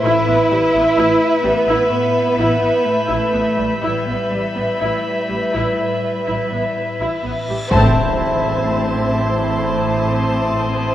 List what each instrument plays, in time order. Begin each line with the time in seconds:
0.02 double bass section A1, marimba A2, cello section E4, viola section E4, synth texture E4 E5 B5, violin section B4 E5 E6
0.28 double bass section A1, viola section B3
0.50 double bass section A1, marimba A2, viola section G3
0.74 double bass section A1, viola section B3
0.95 double bass section A1, marimba A3, viola section E4, violin section G6
1.42 double bass section A1, viola section G3, marimba A3, cello section B3
1.67 double bass section A1, viola section E4
1.90 marimba A2, cello section B3
2.37 double bass section A1, marimba A2, viola section E4
2.61 double bass section A1, viola section B3
2.85 marimba A2, cello section A3
3.08 double bass section A1, viola section E4
3.33 double bass section A1, marimba A2, viola section B3
3.57 double bass section A1, viola section G3
3.81 double bass section A1, marimba A2, cello section G3, viola section E4, synth texture E4 E5 B5, violin section B4 E5, reverse cymbal
4.06 double bass section A1, viola section B3
4.30 double bass section A1, marimba A2, viola section G3
4.55 double bass section A1, viola section B3
4.79 double bass section A1, marimba A3, viola section E4
5.29 double bass section A1, viola section G3, marimba A3
5.53 double bass section A1, viola section E4
5.77 marimba A2
6.26 double bass section A1, marimba A2, viola section E4
6.52 double bass section A1, viola section B3
6.74 marimba A2
7.00 double bass section A1, viola section E4
7.22 double bass section A1, marimba A2, viola section B3
7.48 double bass section A1, viola section G3
7.70 double bass section A1, cello section A2, marimba A2, viola section C4, synth texture E4 E5 C6, violin section C5 A5 C6, impact
8.18 marimba A2
8.64 marimba A3, violin section D6
9.11 marimba A2
9.58 marimba A2, violin section D#6
10.06 marimba A2
10.53 marimba A2